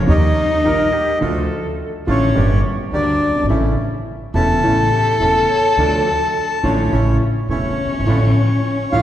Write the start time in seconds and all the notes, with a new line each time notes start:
Already playing: C#5
0.07 D#2 D#3 G3 A#3 D#4 G4 D#5
0.64 A#1 A#2 D#3 G3 A#3 D#4 G4 A#4
0.93 G4
1.21 D2 D3 F3 A3 D4 F4 A4
2.07 A1 A2 D3 F3 A3 C#4 D4 F4 C#5
2.35 G1 G2 D3 G3 A#3 D4 G4
2.92 D2 D3 G3 A#3 D4 G4 D5
3.28 F#1
3.35 G1
3.42 G#1
3.49 A1 A2 C#3 E3 A3 C#4 E4
4.34 E1 E2 C#3 E3 A3 C#4 E4 A4 A5
4.63 A1 A2 C#3 E3 A3 C#4 E4
4.91 G4
5.20 E1 E2 C#3 E3 A3 C#4 E4 A4
5.49 C#5
5.77 D2 D3 F3 A3 D4 F4 D5
6.05 A4
6.63 A1 A2 D3 F3 A3 C#4 D4 F4 C#5
6.92 A1 A2 C#3 E3 A3 C#4 E4
7.49 E1 E2 C#3 E3 A3 C#4 E4 C#5
7.86 F#1
7.92 G1
8.00 G#1
8.06 A1 A2 D3 F3 A3 D4 E4
8.92 A1 A2 D3 F3 A3 D4 E4 F4 F5